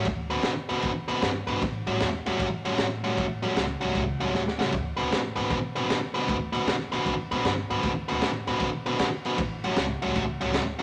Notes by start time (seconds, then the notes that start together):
0.05 D2, kick, snare, ride
0.30 D3 C4 F#4 B4, ride
0.43 F#2, snare, ride
0.69 F#2 D3 C4 F#4 B4, snare, ride
0.82 F#2, kick, ride
1.08 F#2 D3 C4 F#4 B4, ride
1.22 G2, snare, ride
1.47 G2 D3 C4 F#4 B4, ride
1.61 A1, kick, snare, ride
1.86 A1 A2 G3 C#4 F#4, ride
2.00 E2, snare, ride
2.26 E2 A2 G3 C#4 F#4, snare, ride
2.39 F#2, kick, ride
2.65 A2 G3 C#4 F#4, ride
2.78 A2, snare, ride
3.04 A2 G3 C#4 F#4, snare, ride
3.17 A1, kick, ride
3.43 A2 G3 C#4 F#4, ride
3.56 C#2, snare, ride
3.81 C#2 A2 G3 C#4 F#4, ride
3.95 C#2, kick, ride
4.19 C#2 A2 G3 C#4 F#4, ride
4.32 D2, snare
4.48 snare
4.58 C#2 A2 G3 C#4 F#4, snare
4.72 D2, kick, ride
4.97 D2 D3 C4 F#4 B4, ride
5.10 A2, snare, ride
5.36 A2 D3 C4 F#4 B4, ride
5.50 B2, kick, snare, ride
5.76 D3 C4 F#4 B4, ride
5.89 D3, snare, ride
6.14 D3 C4 F#4 B4, snare, ride
6.28 D2, kick, ride
6.53 D3 C4 F#4 B4, ride
6.66 F#2, snare, ride
6.92 F#2 D3 C4 F#4 B4, snare, ride
7.06 F#2, kick, ride
7.31 F#2 D3 C4 F#4 B4, ride
7.44 G2, snare, ride
7.70 G2 D3 C4 F#4 B4, ride
7.83 D2, kick, snare, ride
8.08 D2 D3 C4 F#4 B4, ride
8.22 A2, snare, ride
8.47 A2 D3 C4 F#4 B4, snare, ride
8.60 B2, kick, snare, ride
8.86 D3 C4 F#4 B4, ride
8.99 D3, snare, ride
9.25 D3 C4 F#4 B4, ride
9.38 A1, kick, ride
9.64 A2 G3 C#4 F#4, ride
9.76 C#2, snare, ride
10.02 C#2 A2 G3 C#4 F#4, ride
10.15 C#2, kick, snare, ride
10.41 C#2 A2 G3 C#4 F#4, ride
10.54 D2, snare, ride
10.79 F#4